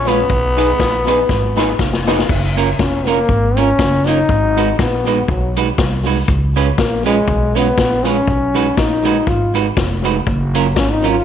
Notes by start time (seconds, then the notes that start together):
Already playing: A#1
0.07 G#3 B3 C#4 F4 B4, closed hi-hat
0.30 B1, kick
0.57 B3 D#4 G#4 B4, closed hi-hat
0.79 A#1, kick, snare
1.07 B3 D#4 G#4 B4, closed hi-hat
1.29 G#1, kick, snare
1.56 B3 D#4 G#4 B4, snare
1.79 F1, kick, snare
1.93 snare
2.07 B3 D#4 G#4 B4, snare
2.19 snare
2.29 F#1, kick, crash
2.57 A#3 C#4 F4 A#4, closed hi-hat
2.79 F1 C#4, kick, snare
3.07 A#3 C#4 F4 A#4, closed hi-hat
3.29 G#1, kick
3.57 A#3 C#4 F4 A#4, closed hi-hat
3.79 F#1, kick, snare
4.07 A#3 C#4 D#4 F4 A#4, closed hi-hat
4.29 G#1, kick
4.57 G#3 D#4 F#4 B4, closed hi-hat
4.79 A#1 B3, kick, snare
5.06 G#3 D#4 F#4 B4, closed hi-hat
5.28 B1 F#3, kick
5.57 G#3 D#4 F#4 B4, closed hi-hat
5.78 C2, kick, snare
6.06 G#3 D#4 F#4 B4, open hi-hat
6.28 C#2, kick, hi-hat pedal
6.56 G#3 C#4 F4 B4, closed hi-hat
6.78 A#1 A#3, kick, snare
7.06 G#3 C#4 F4 B4, closed hi-hat
7.28 B1, kick
7.55 G#3 B3 C#4 F4 B4, closed hi-hat
7.78 A#1, kick, snare
8.05 G#3 C#4 F4 B4, closed hi-hat
8.27 B1, kick
8.55 G#3 D#4 F#4 B4, closed hi-hat
8.77 A#1 D#4, kick, snare
9.05 G#3 D#4 F#4 B4, closed hi-hat
9.27 G#1 F4, kick
9.54 G#3 D#4 F#4 B4, closed hi-hat
9.77 F1, kick, snare
10.04 G#3 D#4 F#4 B4, closed hi-hat
10.27 F#1, kick
10.55 F#3 C#4 F4 A#4, closed hi-hat
10.76 G#1 C#4, kick, snare
10.93 D#4
11.04 F#3 C#4 F4 A#4, closed hi-hat
11.09 F4